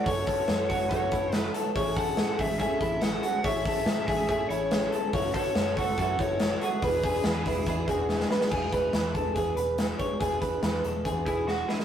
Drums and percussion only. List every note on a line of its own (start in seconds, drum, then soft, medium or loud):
0.06 kick loud
0.06 hi-hat pedal medium
0.06 open hi-hat medium
0.27 kick loud
0.27 hi-hat pedal medium
0.27 open hi-hat medium
0.48 snare loud
0.48 hi-hat pedal medium
0.48 open hi-hat medium
0.69 kick medium
0.69 hi-hat pedal medium
0.69 open hi-hat medium
0.91 kick medium
0.91 hi-hat pedal medium
0.91 open hi-hat medium
1.11 kick medium
1.11 hi-hat pedal medium
1.11 open hi-hat medium
1.32 snare loud
1.32 hi-hat pedal medium
1.32 open hi-hat medium
1.54 hi-hat pedal medium
1.54 open hi-hat medium
1.75 kick loud
1.75 hi-hat pedal medium
1.75 open hi-hat medium
1.97 kick loud
1.97 hi-hat pedal medium
1.97 open hi-hat medium
2.17 snare loud
2.17 hi-hat pedal medium
2.17 open hi-hat medium
2.39 kick medium
2.39 hi-hat pedal medium
2.39 open hi-hat medium
2.60 kick medium
2.60 hi-hat pedal medium
2.60 open hi-hat medium
2.81 kick medium
2.81 hi-hat pedal medium
2.81 open hi-hat medium
3.01 snare loud
3.01 hi-hat pedal medium
3.01 open hi-hat medium
3.23 hi-hat pedal medium
3.23 open hi-hat medium
3.44 kick loud
3.44 hi-hat pedal medium
3.44 open hi-hat medium
3.65 kick loud
3.65 hi-hat pedal medium
3.65 open hi-hat medium
3.86 snare loud
3.86 hi-hat pedal medium
3.86 open hi-hat medium
4.08 kick medium
4.08 hi-hat pedal medium
4.08 open hi-hat medium
4.29 kick medium
4.29 hi-hat pedal medium
4.29 open hi-hat medium
4.50 hi-hat pedal medium
4.50 open hi-hat medium
4.71 snare loud
4.71 hi-hat pedal medium
4.71 open hi-hat medium
4.93 hi-hat pedal medium
4.93 open hi-hat medium
5.13 kick loud
5.13 hi-hat pedal medium
5.13 open hi-hat medium
5.34 kick medium
5.34 hi-hat pedal medium
5.34 open hi-hat medium
5.55 snare loud
5.55 hi-hat pedal medium
5.55 open hi-hat medium
5.77 kick medium
5.77 hi-hat pedal medium
5.77 open hi-hat medium
5.98 kick medium
5.98 hi-hat pedal medium
5.98 open hi-hat medium
6.19 kick medium
6.19 hi-hat pedal medium
6.19 open hi-hat medium
6.40 snare loud
6.40 hi-hat pedal medium
6.40 open hi-hat medium
6.62 hi-hat pedal medium
6.62 open hi-hat medium
6.82 kick loud
6.82 hi-hat pedal medium
6.82 open hi-hat medium
7.03 kick loud
7.03 hi-hat pedal medium
7.03 open hi-hat medium
7.24 snare loud
7.24 hi-hat pedal medium
7.24 open hi-hat medium
7.45 kick medium
7.45 hi-hat pedal medium
7.45 open hi-hat medium
7.66 kick medium
7.66 hi-hat pedal medium
7.66 open hi-hat loud
7.88 kick medium
7.88 hi-hat pedal medium
7.88 open hi-hat medium
8.09 snare medium
8.20 snare medium
8.31 snare medium
8.41 snare medium
8.52 kick loud
8.52 crash medium
8.72 kick medium
8.72 closed hi-hat medium
8.93 snare loud
8.93 closed hi-hat medium
9.15 kick medium
9.15 closed hi-hat medium
9.36 kick medium
9.36 closed hi-hat medium
9.57 closed hi-hat medium
9.78 snare loud
9.78 closed hi-hat medium
9.99 kick medium
9.99 closed hi-hat medium
10.21 kick loud
10.21 closed hi-hat medium
10.42 kick medium
10.42 closed hi-hat medium
10.63 snare loud
10.63 closed hi-hat medium
10.85 closed hi-hat medium
11.05 kick medium
11.05 closed hi-hat medium
11.26 kick medium
11.26 closed hi-hat medium
11.48 snare medium
11.69 snare medium
11.79 snare medium